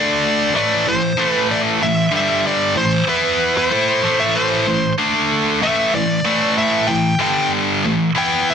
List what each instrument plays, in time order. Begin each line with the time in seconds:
Already playing: distorted electric guitar D3 A3 D4, lead electric guitar D5
0.54 distorted electric guitar A2 E3 A3, lead electric guitar D5
0.86 distorted electric guitar A2 E3, lead electric guitar C5
1.17 distorted electric guitar A2 E3 A3
1.29 lead electric guitar B4
1.51 lead electric guitar D5
1.81 distorted electric guitar A2 E3, lead electric guitar E5
2.12 distorted electric guitar G2 D3 G3
2.16 lead electric guitar E5
2.47 lead electric guitar D5
2.76 distorted electric guitar A2 E3, lead electric guitar C5
3.07 distorted electric guitar E3 B3 E4, lead electric guitar B4
3.57 lead electric guitar B4
3.68 distorted electric guitar A3 E4 A4, lead electric guitar C5
4.03 distorted electric guitar A2 E3 A3
4.20 lead electric guitar E5
4.35 lead electric guitar C5
4.67 distorted electric guitar A2 E3
4.99 distorted electric guitar D3 A3 D4
5.62 distorted electric guitar A2 E3 A3, lead electric guitar E5
5.93 distorted electric guitar A2 E3, lead electric guitar D5
6.25 distorted electric guitar A2 E3 A3
6.58 lead electric guitar E5
6.87 distorted electric guitar A2 E3, lead electric guitar G5
7.19 distorted electric guitar G2 D3 G3, lead electric guitar G5
7.84 distorted electric guitar A2 E3
8.15 distorted electric guitar E3 B3 E4, lead electric guitar G5
8.50 lead electric guitar E5